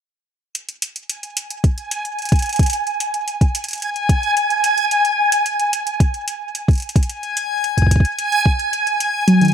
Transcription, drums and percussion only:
0.55 closed hi-hat
0.69 closed hi-hat
0.82 closed hi-hat
0.96 closed hi-hat
1.09 closed hi-hat
1.23 closed hi-hat
1.37 closed hi-hat
1.50 closed hi-hat
1.64 kick, closed hi-hat
1.78 closed hi-hat
1.91 closed hi-hat
2.05 closed hi-hat
2.19 closed hi-hat
2.22 closed hi-hat
2.25 closed hi-hat
2.29 kick, closed hi-hat
2.32 closed hi-hat
2.36 closed hi-hat
2.39 closed hi-hat
2.42 closed hi-hat
2.46 closed hi-hat
2.49 closed hi-hat
2.53 closed hi-hat
2.56 kick, closed hi-hat
2.59 closed hi-hat
2.63 closed hi-hat
2.66 closed hi-hat
2.70 closed hi-hat
2.73 closed hi-hat
2.87 closed hi-hat
3.00 closed hi-hat
3.14 closed hi-hat
3.28 closed hi-hat
3.41 kick, closed hi-hat
3.55 closed hi-hat
3.64 closed hi-hat
3.68 closed hi-hat
3.71 closed hi-hat
3.73 closed hi-hat
3.75 closed hi-hat
3.78 closed hi-hat
3.80 closed hi-hat
3.82 closed hi-hat
3.96 closed hi-hat
4.09 kick, closed hi-hat
4.23 closed hi-hat
4.37 closed hi-hat
4.50 closed hi-hat
4.64 closed hi-hat
4.78 closed hi-hat
4.91 closed hi-hat
5.05 closed hi-hat
5.32 closed hi-hat
5.46 closed hi-hat
5.59 closed hi-hat
5.73 closed hi-hat
5.87 closed hi-hat
6.00 kick, closed hi-hat
6.14 closed hi-hat
6.28 closed hi-hat
6.55 closed hi-hat
6.68 kick, closed hi-hat
6.71 closed hi-hat
6.73 closed hi-hat
6.75 closed hi-hat
6.78 closed hi-hat
6.80 closed hi-hat
6.82 closed hi-hat
6.89 closed hi-hat
6.96 kick, closed hi-hat
7.03 closed hi-hat
7.09 closed hi-hat
7.23 closed hi-hat
7.37 closed hi-hat
7.64 closed hi-hat
7.78 kick, closed hi-hat
7.82 kick
7.87 kick
7.91 kick, closed hi-hat
7.96 kick
8.00 kick
8.05 closed hi-hat
8.19 closed hi-hat
8.32 closed hi-hat
8.46 kick
8.59 closed hi-hat
8.73 closed hi-hat
8.87 closed hi-hat
9.00 closed hi-hat
9.28 closed hi-hat
9.41 closed hi-hat
9.45 closed hi-hat

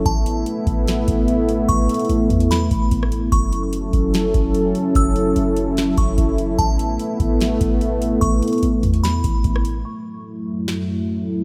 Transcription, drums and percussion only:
0.06 kick, closed hi-hat
0.26 closed hi-hat
0.46 closed hi-hat
0.67 kick, closed hi-hat
0.87 snare, closed hi-hat
1.08 kick, closed hi-hat
1.28 closed hi-hat
1.49 closed hi-hat
1.69 kick, closed hi-hat
1.89 closed hi-hat
1.94 closed hi-hat
1.99 closed hi-hat
2.05 closed hi-hat
2.09 closed hi-hat
2.30 kick, closed hi-hat, open hi-hat
2.40 closed hi-hat
2.51 snare, closed hi-hat
2.71 kick, closed hi-hat
2.91 kick, closed hi-hat
3.03 cross-stick
3.12 closed hi-hat
3.32 kick, closed hi-hat
3.53 closed hi-hat
3.73 closed hi-hat
3.93 kick, closed hi-hat
4.14 snare, closed hi-hat
4.34 kick, closed hi-hat
4.54 closed hi-hat
4.75 closed hi-hat
4.95 kick, closed hi-hat
5.16 closed hi-hat
5.36 closed hi-hat
5.56 closed hi-hat
5.77 snare, closed hi-hat
5.97 kick, closed hi-hat
6.18 kick, closed hi-hat
6.38 closed hi-hat
6.59 kick, closed hi-hat
6.79 closed hi-hat
6.99 closed hi-hat
7.20 kick, closed hi-hat
7.41 snare, closed hi-hat
7.61 kick, closed hi-hat
7.81 closed hi-hat
8.02 closed hi-hat
8.22 kick, closed hi-hat
8.42 closed hi-hat
8.48 closed hi-hat
8.53 closed hi-hat
8.58 closed hi-hat
8.63 closed hi-hat
8.83 kick, closed hi-hat, open hi-hat
8.94 closed hi-hat
9.04 snare, closed hi-hat
9.24 kick, closed hi-hat
9.44 kick, closed hi-hat
9.56 cross-stick
9.65 closed hi-hat
10.68 snare

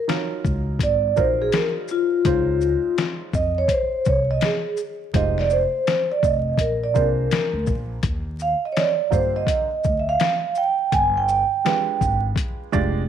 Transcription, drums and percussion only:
0.09 snare, closed hi-hat
0.45 kick, shaker
0.79 kick, closed hi-hat
1.17 kick, shaker
1.52 snare, closed hi-hat
1.88 shaker
2.25 kick, closed hi-hat
2.61 shaker
2.98 snare, closed hi-hat
3.34 kick, shaker
3.68 kick, closed hi-hat
4.05 kick, shaker
4.41 snare, closed hi-hat
4.77 shaker
5.14 kick, closed hi-hat
5.38 snare
5.50 shaker
5.87 snare, closed hi-hat
6.23 kick, shaker
6.58 kick, closed hi-hat
6.95 kick, shaker
7.31 snare, closed hi-hat
7.66 kick, shaker
8.03 kick, closed hi-hat
8.39 shaker
8.77 snare, closed hi-hat
9.12 kick, shaker
9.47 kick, closed hi-hat
9.84 kick, shaker
10.20 snare, closed hi-hat
10.55 shaker
10.92 kick, closed hi-hat
11.28 shaker
11.66 snare, closed hi-hat
12.01 kick, shaker
12.36 kick, closed hi-hat
12.73 kick, shaker

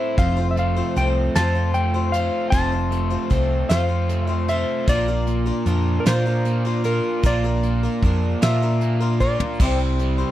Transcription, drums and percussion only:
0.18 kick, closed hi-hat
0.57 closed hi-hat
0.96 closed hi-hat
1.35 snare, closed hi-hat
1.74 closed hi-hat
2.13 closed hi-hat
2.52 kick, closed hi-hat
2.92 closed hi-hat
3.31 kick, closed hi-hat
3.70 snare, closed hi-hat
4.09 closed hi-hat
4.48 closed hi-hat
4.87 kick, closed hi-hat
5.27 closed hi-hat
5.66 closed hi-hat
6.06 snare, closed hi-hat
6.45 closed hi-hat
6.84 closed hi-hat
7.23 kick, closed hi-hat
7.63 closed hi-hat
8.02 kick, closed hi-hat
8.42 snare, closed hi-hat
8.81 closed hi-hat
9.21 kick
9.40 floor tom
9.60 kick, crash
9.99 closed hi-hat

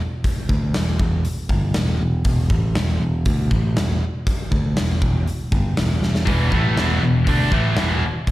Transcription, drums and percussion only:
0.24 kick, open hi-hat
0.49 kick
0.74 snare, open hi-hat
0.99 kick
1.25 open hi-hat
1.49 kick
1.74 snare, open hi-hat
2.25 kick, open hi-hat
2.50 kick
2.75 snare, open hi-hat
3.25 kick, open hi-hat
3.51 kick
3.77 snare, open hi-hat
4.27 kick, open hi-hat
4.52 kick
4.77 snare, open hi-hat
5.02 kick
5.28 open hi-hat
5.52 kick
5.77 snare, open hi-hat
6.03 snare
6.15 snare
6.27 kick, open hi-hat
6.52 kick
6.77 snare, open hi-hat
7.27 kick, open hi-hat
7.52 kick
7.76 snare, open hi-hat
8.27 kick, open hi-hat

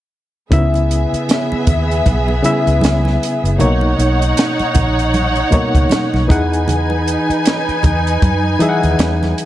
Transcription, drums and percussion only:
0.52 kick, closed hi-hat, muted conga, low conga
0.74 closed hi-hat, muted conga
0.91 closed hi-hat
1.14 closed hi-hat
1.29 snare, closed hi-hat, muted conga
1.52 muted conga
1.67 kick, closed hi-hat, low conga
1.91 closed hi-hat
2.06 kick, closed hi-hat, muted conga, high conga
2.28 muted conga
2.44 closed hi-hat, high conga
2.67 closed hi-hat
2.81 snare, closed hi-hat, muted conga, high conga
3.05 snare, high conga
3.23 closed hi-hat
3.45 closed hi-hat
3.60 closed hi-hat, low conga
3.81 muted conga
3.99 closed hi-hat
4.22 closed hi-hat
4.37 snare, closed hi-hat
4.59 closed hi-hat, muted conga
4.74 kick, closed hi-hat, low conga
4.99 closed hi-hat
5.14 closed hi-hat, high conga
5.35 closed hi-hat, muted conga
5.52 kick, closed hi-hat, high conga
5.75 kick, closed hi-hat
5.89 snare, closed hi-hat, muted conga, high conga
6.14 snare, muted conga, high conga
6.30 kick, closed hi-hat
6.53 closed hi-hat
6.68 closed hi-hat, muted conga, low conga
6.90 muted conga
7.08 closed hi-hat
7.30 closed hi-hat
7.45 snare, closed hi-hat
7.69 closed hi-hat
7.83 kick, closed hi-hat, low conga
8.07 closed hi-hat
8.22 kick, closed hi-hat, muted conga, high conga
8.60 closed hi-hat, high conga
8.83 closed hi-hat
8.99 snare, closed hi-hat, high conga
9.22 snare, muted conga, high conga
9.38 closed hi-hat

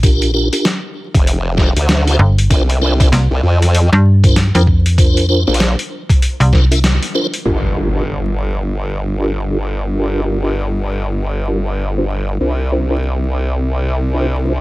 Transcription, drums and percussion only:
0.03 kick, closed hi-hat
0.22 closed hi-hat
0.53 closed hi-hat
0.65 snare, closed hi-hat
1.14 kick, closed hi-hat
1.27 closed hi-hat
1.58 kick, snare
1.77 closed hi-hat
1.89 snare, closed hi-hat
2.08 closed hi-hat
2.38 closed hi-hat
2.51 kick, closed hi-hat
2.70 closed hi-hat
3.00 kick, closed hi-hat
3.13 snare, closed hi-hat
3.62 cross-stick, closed hi-hat
3.75 closed hi-hat
3.93 cross-stick
4.24 kick, closed hi-hat
4.36 snare, closed hi-hat
4.55 closed hi-hat
4.67 kick
4.86 closed hi-hat
4.98 kick, closed hi-hat
5.17 closed hi-hat
5.54 closed hi-hat
5.60 snare, closed hi-hat
5.79 closed hi-hat
6.09 kick, cross-stick, closed hi-hat
6.22 closed hi-hat
6.41 closed hi-hat
6.53 kick, snare
6.72 closed hi-hat
6.84 snare, closed hi-hat
7.03 closed hi-hat
7.34 closed hi-hat

